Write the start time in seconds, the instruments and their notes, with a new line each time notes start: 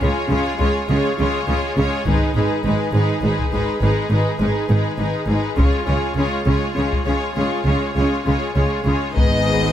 0.01 double bass section C#2, cello section C#3, viola section G#3 F4, violin section G#4 C#5
0.31 double bass section C#2, cello section C#3, viola section G#3 F4, violin section G#4 C#5
0.59 double bass section C#2, cello section C#3, viola section G#3 F4, violin section G#4 C#5
0.88 double bass section C#2, cello section C#3, viola section G#3 F4, violin section G#4 C#5
1.18 double bass section C#2, cello section C#3, viola section G#3 F4, violin section G#4 C#5
1.48 double bass section C#2, cello section C#3, viola section G#3 F4, violin section G#4 C#5
1.77 double bass section C#2, cello section C#3, viola section G#3 F4, violin section G#4 C#5
2.06 double bass section G#1, cello section G#2, viola section G#3 D#4, violin section G#4 B4, taiko
2.35 double bass section G#1, cello section G#2, viola section G#3 D#4, violin section G#4 B4
2.64 double bass section G#1, cello section G#2, viola section G#3 D#4, violin section G#4 B4
2.93 double bass section G#1, cello section G#2, viola section G#3 D#4, violin section G#4 B4
3.22 double bass section G#1, cello section G#2, viola section G#3 D#4, violin section G#4 B4
3.39 taiko
3.51 double bass section G#1, cello section G#2, viola section G#3 D#4, violin section G#4 B4
3.80 double bass section G#1, cello section G#2, viola section G#3 D#4, violin section G#4 B4
4.11 double bass section G#1, cello section G#2, viola section G#3 D#4, violin section G#4 B4
4.39 double bass section G#1, cello section G#2, viola section G#3 D#4, violin section G#4 B4
4.69 double bass section G#1, cello section G#2, viola section G#3 D#4, violin section G#4 B4
4.98 double bass section G#1, cello section G#2, viola section G#3 D#4, violin section G#4 B4
5.27 double bass section G#1, cello section G#2, viola section G#3 D#4, violin section G#4 B4
5.57 double bass section C#2, cello section C#3, viola section G#3 F4, violin section G#4 C#5, taiko
5.86 double bass section C#2, cello section C#3, viola section G#3 F4, violin section G#4 C#5
6.16 double bass section C#2, cello section C#3, viola section G#3 F4, violin section G#4 C#5
6.45 double bass section C#2, cello section C#3, viola section G#3 F4, violin section G#4 C#5
6.75 double bass section C#2, cello section C#3, viola section G#3 F4, violin section G#4 C#5
6.93 taiko
7.05 double bass section C#2, cello section C#3, viola section G#3 F4, violin section G#4 C#5
7.35 double bass section C#2, cello section C#3, viola section G#3 F4, violin section G#4 C#5
7.64 double bass section C#2, cello section C#3, viola section G#3 F4, violin section G#4 C#5
7.95 double bass section C#2, cello section C#3, viola section G#3 F4, violin section G#4 C#5
8.26 double bass section C#2, cello section C#3, viola section G#3 F4, violin section G#4 C#5
8.55 double bass section C#2, cello section C#3, viola section G#3 F4, violin section G#4 C#5
8.85 double bass section C#2, cello section C#3, viola section G#3 F4, violin section G#4 C#5
9.15 double bass section G#1, cello section G#2, french horn section G#3 B3, viola section G#3 D#4, violin section G#4 B4 D#5, taiko